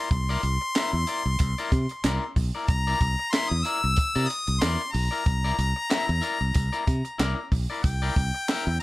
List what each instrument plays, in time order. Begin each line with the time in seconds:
Already playing: harmonica C6
0.11 fingered electric bass C2, harmonica C6, muted clean electric guitar stroke, kick, closed hi-hat
0.29 clean electric guitar E4 A#4 D5
0.43 fingered electric bass C2, closed hi-hat
0.61 muted clean electric guitar stroke
0.75 clean electric guitar E4 A#4 E5, snare, clap, closed hi-hat
0.93 fingered electric bass E2, muted clean electric guitar stroke
1.07 clean electric guitar E4 A#4 D5, closed hi-hat
1.26 fingered electric bass C2
1.39 fingered electric bass C2, muted clean electric guitar stroke, kick, closed hi-hat
1.58 clean electric guitar E4 A#4 D5, closed hi-hat
1.72 fingered electric bass C3, kick, closed hi-hat
1.89 muted clean electric guitar stroke, closed hi-hat
2.04 fingered electric bass C2, clean electric guitar E4 A#4 D5, snare, clap, closed hi-hat
2.36 fingered electric bass B1, muted clean electric guitar stroke, kick, open hi-hat
2.55 clean electric guitar E4 A#4 D5
2.68 fingered electric bass C2, harmonica A#5, muted clean electric guitar stroke, kick, closed hi-hat
2.87 clean electric guitar E4 A#4 D5
3.01 fingered electric bass C2, kick, closed hi-hat
3.19 muted clean electric guitar stroke
3.32 clean electric guitar E4 A#4 E5, harmonica C6, snare, clap, closed hi-hat
3.49 fingered electric bass E2, harmonica D#6, muted clean electric guitar stroke
3.64 clean electric guitar E4 A#4 D5, harmonica E6, closed hi-hat
3.84 fingered electric bass C2, muted clean electric guitar stroke
3.96 muted clean electric guitar stroke, muted fingered electric bass stroke, kick, closed hi-hat
4.15 fingered electric bass C3, clean electric guitar E4 A#4 D5, closed hi-hat
4.28 harmonica D#6, muted clean electric guitar stroke, closed hi-hat
4.47 fingered electric bass C2, muted clean electric guitar stroke, closed hi-hat
4.61 fingered electric bass E2, clean electric guitar E4 A#4 D5, harmonica C6, snare, clap, closed hi-hat
4.92 fingered electric bass B1, harmonica A#5, muted clean electric guitar stroke, open hi-hat
5.11 clean electric guitar E4 A#4 D5
5.26 fingered electric bass C2, muted clean electric guitar stroke, kick, closed hi-hat
5.44 clean electric guitar E4 A#4 D5
5.59 fingered electric bass C2, muted clean electric guitar stroke, closed hi-hat
5.76 muted clean electric guitar stroke
5.90 clean electric guitar E4 A#4 E5, snare, clap, closed hi-hat
6.08 fingered electric bass E2, muted clean electric guitar stroke
6.21 clean electric guitar E4 A#4 D5, closed hi-hat
6.41 fingered electric bass C2, muted clean electric guitar stroke
6.54 fingered electric bass C2, muted clean electric guitar stroke, kick, closed hi-hat
6.73 clean electric guitar E4 A#4 D5, closed hi-hat
6.87 fingered electric bass C3, muted clean electric guitar stroke, kick, closed hi-hat
7.05 muted clean electric guitar stroke, closed hi-hat
7.18 fingered electric bass C2, clean electric guitar E4 A#4 D5, snare, clap, closed hi-hat
7.52 fingered electric bass B1, muted clean electric guitar stroke, kick, open hi-hat
7.70 clean electric guitar E4 A#4 D5
7.83 fingered electric bass C2, harmonica G5, muted clean electric guitar stroke, kick, closed hi-hat
8.02 clean electric guitar E4 A#4 D5
8.16 fingered electric bass C2, kick, closed hi-hat
8.34 muted clean electric guitar stroke
8.48 clean electric guitar E4 A#4 E5, snare, clap, closed hi-hat
8.67 fingered electric bass E2, muted clean electric guitar stroke
8.80 harmonica A#5